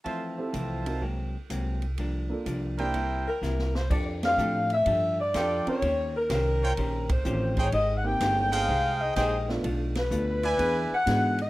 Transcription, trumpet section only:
X:1
M:4/4
L:1/8
Q:"Swing" 1/4=126
K:F
V:1 name="Trumpet section"
[Fcea]4 z4 | z3 [EBcg]3 z2 | z6 [FAdg]2 | z3 [Fc_dg] z3 [_E_Acg] |
z3 [_E_Acg]3 [EAcg] z | z3 [E=Bd_a]3 z2 |]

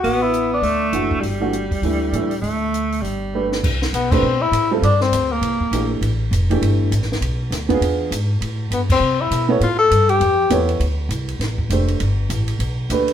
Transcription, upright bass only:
X:1
M:4/4
L:1/8
Q:"Swing" 1/4=201
K:G
V:1 name="Upright bass" clef=bass
A,,,4 D,,2 F,,,2 | G,,,4 D,,2 A,,2 | D,,4 G,,,4 | [K:C] C,,2 B,,,2 B,,2 A,,2 |
G,,2 D,,2 C,, z _B,,,2 | A,,,2 F,,,2 G,,,2 A,,,2 | B,,,2 D,,2 E,,2 ^G,,2 | A,,2 G,,2 C,2 B,,2 |
A,,2 G,,2 F,,2 E,,2 | D,,2 C,,2 A,,,2 F,,,2 | G,,,2 A,,,2 B,,,2 D,,2 |]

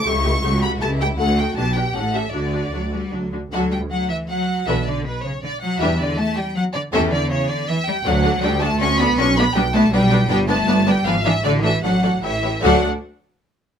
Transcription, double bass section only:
X:1
M:3/4
L:1/8
Q:1/4=158
K:D
V:1 name="Double bass section" clef=bass
C,,2 C,,2 C,,2 | D,,2 B,,,2 A,,,2 | D,,2 D,,2 D,,2 | D,,2 z4 |
B,,,2 z4 | E,,2 z4 | E,,2 z4 | D,,2 D,,2 D,,2 |
B,,,2 B,,,2 B,,,2 | G,,,2 G,,,2 ^G,,,2 | A,,,2 A,,,2 A,,,2 | D,, z4 z |]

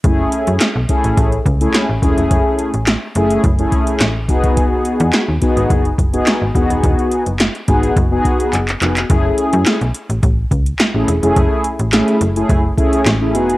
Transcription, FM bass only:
X:1
M:4/4
L:1/16
Q:1/4=106
K:F#dor
V:1 name="FM bass" clef=bass
F,,,2 z F,, z B,,, z A,,, A,,,2 C,,2 z A,,, E,,, ^E,,, | F,,, z2 A,,,2 z F,,,2 F,,,2 z2 A,,,2 E,,,2- | E,,,2 z E,, z D,, z G,,, F,,,2 F,,,2 z G,,, E,,, D,,, | E,,, z2 F,,,2 z G,,,2 F,,,2 z2 F,,,2 ^E,,,2 |
F,,,2 z F,, z B,,, z A,,, A,,,2 C,,2 z A,,, E,,, ^E,,, | F,,, z2 A,,,2 z F,,,2 F,,,2 z2 A,,,2 E,,,2 |]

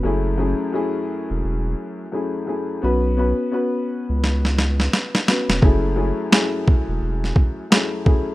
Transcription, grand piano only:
X:1
M:4/4
L:1/8
Q:"Swing 16ths" 1/4=86
K:F#m
V:1 name="Grand piano"
[F,,A,CEG] [F,,A,CEG] [F,,A,CEG]4 [F,,A,CEG] [F,,A,CEG] | [B,CFB] [B,CFB] [B,CFB]4- [B,CFB] [B,CFB] | [F,,A,CEG] [F,,A,CEG] [F,,A,CEG]4 [F,,A,CEG] [F,,A,CEG] |]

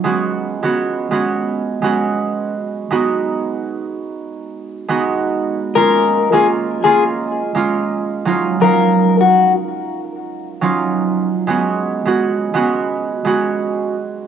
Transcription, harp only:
X:1
M:4/4
L:1/16
Q:"Swing 16ths" 1/4=84
K:Dbmix
V:1 name="Harp"
[A,CDG]3 [A,CDG]3 [A,CDG]3 z [A,CDG]4 z2 | [A,CEG]8- [A,CEG] z2 [A,CEG]4 z | [A,B,DF]3 [A,B,DF]3 [A,B,DF]3 z [A,B,DF]4 [G,DEF]2 | [G,DEf]8- [G,DEf] z2 [G,DEF]4 z |
[A,CDG]3 [A,CDG]3 [A,CDG]3 z [A,CDG]4 z2 |]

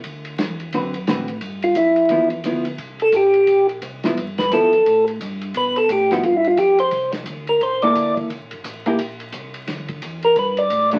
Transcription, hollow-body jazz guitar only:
X:1
M:4/4
L:1/8
Q:"Swing" 1/4=174
K:Gmix
V:1 name="Hollow-body jazz guitar"
z4 [D,C^FB] z [D,CFB] z | z4 [F,B,E] z [F,B,E] z | z6 z [F,B,E] | z2 [F,B,E] z4 z |
z3 [F,B,E] z4 | z4 z [_B,EA]3 | z3 [^A,EG] z4 | z6 z [^F,A,D] |]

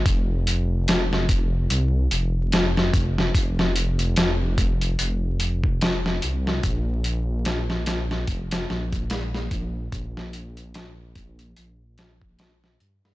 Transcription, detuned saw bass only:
X:1
M:4/4
L:1/16
Q:"Swing 16ths" 1/4=73
K:Bbdor
V:1 name="Detuned saw bass" clef=bass
F,,,8 C,,2 F,,,4 F,,,2 | F,,,8 F,,,6 C,,2 | B,,,8 F,,,2 B,,,4 B,,,2 | B,,,8 B,,,6 G,, G,, |]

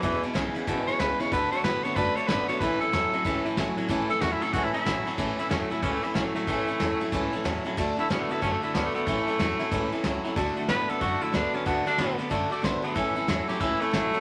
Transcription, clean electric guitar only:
X:1
M:4/4
L:1/8
Q:"Swing" 1/4=185
K:A
V:1 name="Clean electric guitar" clef=bass
[E,,B,,] [E,,B,,] [E,,C,] [E,,C,] [E,,B,,] [E,,B,,] [E,,C,] [E,,C,] | [D,A,] [D,A,] [D,B,] [D,B,] [D,A,] [D,A,] [D,B,] [D,B,] | [A,,E,] [A,,E,] [A,,F,] [A,,F,] [A,,E,] [A,,E,] [A,,F,] [A,,F,] | [A,,E,] [A,,E,] [A,,F,] [A,,F,] [A,,E,] [A,,E,] [A,,F,] [A,,F,] |
[A,,E,] [A,,E,] [A,,F,] [A,,F,] [A,,E,] [A,,E,] [A,,F,] [A,,F,] | [A,,E,] [A,,E,] [A,,F,] [A,,F,] [A,,E,] [A,,E,] [A,,F,] [A,,F,] | [D,A,] [D,A,] [D,B,] [D,B,] [D,A,] [D,A,] [D,B,] [D,B,] | [A,,E,] [A,,E,] [A,,F,] [A,,F,] [A,,E,] [A,,E,] [A,,F,] [A,,F,] |
[D,A,] [D,A,] [D,B,] [D,B,] [D,A,] [D,A,] [D,B,] [D,B,] | [D,A,] [D,A,] [D,B,] [D,B,] [D,A,] [D,A,] [D,B,] [D,B,] | [A,,E,] [A,,E,] [A,,F,] [A,,F,] [A,,E,] [A,,E,] [A,,F,] [A,,F,] |]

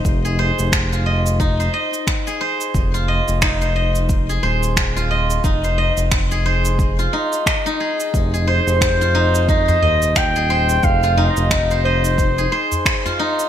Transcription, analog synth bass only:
X:1
M:4/4
L:1/16
Q:"Swing 16ths" 1/4=89
K:Fm
V:1 name="Analog synth bass" clef=bass
F,,,3 F,,,6- F,,, z6 | F,,,3 F,,,6- F,,, E,,,6 | F,,,3 F,,,6- F,,, z6 | F,,,3 F,,,6- F,,, E,,,6 |
F,,,3 F,,,6- F,,, z6 |]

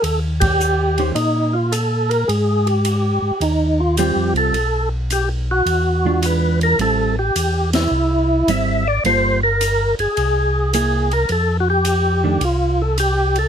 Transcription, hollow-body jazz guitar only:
X:1
M:4/4
L:1/8
Q:"Swing" 1/4=107
K:Eblyd
V:1 name="Hollow-body jazz guitar"
z3 [E,_DGc] z4 | z6 [G,CF]2 | z4 z [=E,^G,DF]3 | [G,C=E] z4 z [G,CE] z |
[G,B,FA] z4 z [B,=E^G] z | z3 [E,A,D] z4 |]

